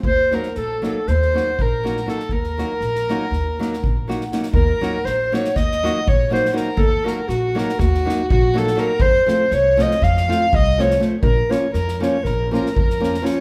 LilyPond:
<<
  \new Staff \with { instrumentName = "Clarinet" } { \time 9/8 \tempo 4. = 81 c''8 bes'8 a'8 a'8 c''4 bes'4 a'8 | bes'2.~ bes'8 r4 | bes'4 c''8 des''8 ees''4 des''8 c''16. c''32 bes'8 | a'8 bes'8 ges'8 bes'8 ges'4 ges'8 a'8 bes'8 |
c''8 c''8 des''8 ees''8 f''4 ees''8 des''8 r8 | bes'8 des''8 bes'8 des''8 bes'8 bes'8 bes'4 des''8 | }
  \new Staff \with { instrumentName = "Violin" } { \time 9/8 c''8 bes'8 a'8 a'8 c''4 bes'4 a'8 | bes'2.~ bes'8 r4 | bes'4 c''8 des''8 ees''4 des''8 c''16. c''32 bes'8 | a'8 bes'8 ges'8 bes'8 ges'4 ges'8 a'8 bes'8 |
c''8 c''8 des''8 ees''8 f''4 ees''8 des''8 r8 | bes'8 des''8 bes'8 des''8 bes'8 bes'8 bes'4 des''8 | }
  \new Staff \with { instrumentName = "Nylon-string guitar" } { \time 9/8 r8 <ges bes ees' ges'>8 r8 <ges bes ees' ges'>8 r8 <ges bes ees' ges'>8 r8 <ges bes ees' ges'>8 <ges bes ees' ges'>8 | r8 <ges bes ees' ges'>8 r8 <ges bes ees' ges'>8 r8 <ges bes ees' ges'>8 r8 <ges bes ees' ges'>8 <ges bes ees' ges'>8 | r8 <ges bes ees' ges'>8 r8 <ges bes ees' ges'>8 r8 <ges bes ees' ges'>8 r8 <ges bes ees' ges'>8 <ges bes ees' ges'>8 | r8 <ges bes ees' ges'>8 r8 <ges bes ees' ges'>8 r8 <ges bes ees' ges'>8 r8 <ges bes ees' ges'>8 <ges bes ees' ges'>8 |
r8 <f a c' f'>8 r8 <f a c' f'>8 r8 <f a c' f'>8 r8 <f a c' f'>8 <f a c' f'>8 | r8 <f bes des' f'>8 r8 <f bes des' f'>8 r8 <f bes des' f'>8 r8 <f bes des' f'>8 <f bes des' f'>8 | }
  \new Staff \with { instrumentName = "Upright bass" } { \clef bass \time 9/8 ees,4 bes,,4 ees,4 bes,,4. | ees,4 bes,,4 ees,4 bes,,4. | ees,8 r8 bes,,4 ees,4 bes,,4. | ees,8 r8 bes,,4 ees,4 bes,,4. |
f,8 r8 c,4 f,4 c,4. | bes,,8 r8 f,4 bes,,4 f,4. | }
  \new DrumStaff \with { instrumentName = "Drums" } \drummode { \time 9/8 bd8 sn16 sn16 sn8 sn8 sn16 sn16 sn8 bd8 sn16 sn16 sn16 sn16 | bd16 sn16 sn8 sn16 sn16 sn8 <bd sn>8 sn16 sn16 bd8 sn16 sn16 sn16 sn16 | bd8 sn8 sn8 sn16 sn16 <bd sn>16 sn16 sn8 bd8 sn16 sn16 sn8 | bd8 sn8 sn8 sn16 sn16 <bd sn>16 sn16 sn8 bd8 sn16 sn16 sn8 |
bd8 sn8 sn8 sn16 sn16 <bd sn>16 sn16 sn8 bd8 sn16 sn16 sn8 | bd8 sn8 sn16 sn16 sn8 <bd sn>8 sn16 sn16 bd16 sn16 sn16 sn16 sn8 | }
>>